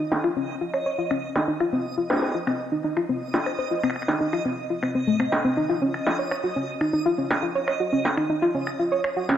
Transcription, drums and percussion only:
0.12 snare
0.24 finger snap
0.74 finger snap
1.11 finger snap
1.36 snare
1.60 finger snap
2.10 finger snap, snare
2.13 snare
2.16 snare
2.19 snare
2.22 snare
2.25 snare
2.29 snare
2.32 snare
2.47 finger snap
2.97 finger snap
3.34 snare
3.46 finger snap
3.84 finger snap
3.90 finger snap
3.96 finger snap
4.02 finger snap
4.08 snare
4.33 finger snap
4.83 finger snap
5.20 finger snap
5.32 snare
5.94 finger snap
6.07 snare
6.31 finger snap
6.81 finger snap
7.31 finger snap, snare
7.68 finger snap
8.05 snare
8.17 finger snap
8.67 finger snap
9.04 finger snap
9.29 snare

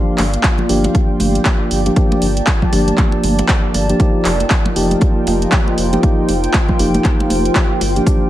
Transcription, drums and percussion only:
0.18 clap, open hi-hat, muted conga
0.34 closed hi-hat
0.43 kick, clap, closed hi-hat
0.58 muted conga, low conga
0.69 open hi-hat
0.84 closed hi-hat, muted conga, high conga
0.95 kick, closed hi-hat
1.20 open hi-hat, muted conga, high conga
1.35 closed hi-hat
1.45 kick, clap, closed hi-hat, muted conga
1.71 open hi-hat
1.86 closed hi-hat, muted conga
1.96 kick, closed hi-hat
2.12 muted conga
2.22 open hi-hat
2.37 closed hi-hat
2.47 kick, clap, closed hi-hat, muted conga
2.62 kick, low conga
2.73 open hi-hat, muted conga
2.88 closed hi-hat, high conga
2.98 kick, clap, closed hi-hat
3.12 muted conga
3.24 open hi-hat, high conga
3.39 closed hi-hat, muted conga
3.48 kick, clap, closed hi-hat
3.74 open hi-hat, muted conga
3.89 closed hi-hat
4.00 kick, closed hi-hat, muted conga
4.25 clap, open hi-hat
4.40 closed hi-hat, muted conga
4.50 kick, clap, closed hi-hat
4.65 muted conga, low conga
4.76 open hi-hat
4.91 closed hi-hat, high conga
5.01 kick, closed hi-hat, muted conga
5.27 open hi-hat, muted conga, high conga
5.42 closed hi-hat
5.52 kick, clap, closed hi-hat
5.68 muted conga
5.78 open hi-hat
5.93 closed hi-hat, muted conga
6.03 kick, closed hi-hat
6.28 open hi-hat, muted conga
6.44 closed hi-hat
6.53 kick, clap, closed hi-hat, muted conga
6.68 kick, low conga
6.79 open hi-hat
6.94 closed hi-hat, muted conga, high conga
7.04 kick, clap, closed hi-hat
7.20 muted conga
7.30 open hi-hat, high conga
7.45 closed hi-hat
7.55 kick, clap, closed hi-hat, muted conga
7.81 open hi-hat, muted conga
7.96 closed hi-hat
8.06 kick, closed hi-hat, muted conga, shaker

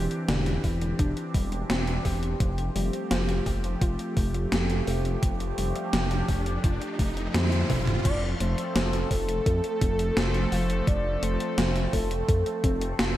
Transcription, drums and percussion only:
0.11 closed hi-hat
0.29 snare, closed hi-hat
0.46 closed hi-hat
0.64 kick, open hi-hat
0.81 closed hi-hat
0.99 kick, closed hi-hat
1.17 closed hi-hat
1.34 kick, open hi-hat
1.52 closed hi-hat
1.70 snare, closed hi-hat
1.87 closed hi-hat
2.05 kick, open hi-hat
2.23 closed hi-hat
2.40 kick, closed hi-hat
2.58 closed hi-hat
2.76 open hi-hat
2.93 closed hi-hat
3.11 snare, closed hi-hat
3.29 closed hi-hat
3.46 kick, open hi-hat
3.64 closed hi-hat
3.81 kick, closed hi-hat
3.99 closed hi-hat
4.17 kick, open hi-hat
4.34 closed hi-hat
4.52 snare, closed hi-hat
4.70 closed hi-hat
4.87 open hi-hat
5.05 closed hi-hat
5.23 kick, closed hi-hat
5.40 closed hi-hat
5.58 open hi-hat
5.76 closed hi-hat
5.93 snare, closed hi-hat
6.11 closed hi-hat
6.29 kick, open hi-hat
6.46 closed hi-hat
6.64 kick, closed hi-hat
6.82 closed hi-hat
6.99 kick, open hi-hat
7.17 closed hi-hat
7.34 snare, closed hi-hat, high tom
7.52 closed hi-hat, high tom
7.70 kick, open hi-hat, mid tom
7.87 closed hi-hat, mid tom
8.05 kick, closed hi-hat, crash
8.40 closed hi-hat
8.58 closed hi-hat
8.76 snare, closed hi-hat
8.93 closed hi-hat
9.11 kick, open hi-hat
9.29 closed hi-hat
9.46 kick, closed hi-hat
9.64 closed hi-hat
9.81 kick, closed hi-hat
9.99 closed hi-hat
10.17 snare, closed hi-hat
10.34 closed hi-hat
10.52 open hi-hat
10.70 closed hi-hat
10.87 kick, closed hi-hat
11.23 closed hi-hat
11.40 closed hi-hat
11.58 snare, closed hi-hat
11.76 closed hi-hat
11.93 kick, open hi-hat
12.11 closed hi-hat
12.29 kick, closed hi-hat
12.46 closed hi-hat
12.64 kick, closed hi-hat
12.81 closed hi-hat
12.99 snare, closed hi-hat

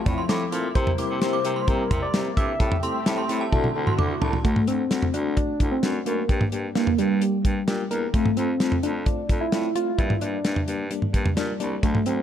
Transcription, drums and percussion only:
0.06 kick, closed hi-hat, mid tom, cowbell
0.29 snare, closed hi-hat
0.52 closed hi-hat
0.75 kick, closed hi-hat
0.87 mid tom
0.98 closed hi-hat
1.22 snare, closed hi-hat
1.45 closed hi-hat
1.68 kick, closed hi-hat
1.91 kick, closed hi-hat, mid tom
2.14 snare, closed hi-hat
2.37 kick, closed hi-hat
2.60 kick, closed hi-hat
2.72 mid tom
2.83 closed hi-hat
3.06 snare, closed hi-hat
3.29 closed hi-hat
3.52 kick, high tom
3.64 high tom
3.87 mid tom
3.99 mid tom
4.22 floor tom
4.33 floor tom
4.45 kick, closed hi-hat
4.56 mid tom
4.67 closed hi-hat
4.91 snare, closed hi-hat
5.02 mid tom
5.14 closed hi-hat
5.37 kick, closed hi-hat
5.60 kick, closed hi-hat
5.83 snare, closed hi-hat
6.06 closed hi-hat
6.29 kick, closed hi-hat
6.41 mid tom
6.52 closed hi-hat
6.75 snare, closed hi-hat
6.87 mid tom
6.98 closed hi-hat
7.22 closed hi-hat
7.45 kick, closed hi-hat
7.68 snare, closed hi-hat
7.91 closed hi-hat
8.14 kick, closed hi-hat
8.26 mid tom
8.37 closed hi-hat
8.60 snare, closed hi-hat
8.72 mid tom
8.83 closed hi-hat
9.06 kick, closed hi-hat
9.29 kick, closed hi-hat
9.52 snare, closed hi-hat
9.76 closed hi-hat
9.99 kick, closed hi-hat
10.10 mid tom
10.21 closed hi-hat
10.45 snare, closed hi-hat
10.56 mid tom
10.68 closed hi-hat
10.91 closed hi-hat
11.02 mid tom
11.14 kick, closed hi-hat
11.26 mid tom
11.37 snare, closed hi-hat
11.60 closed hi-hat
11.83 kick, closed hi-hat
11.95 mid tom
12.06 closed hi-hat

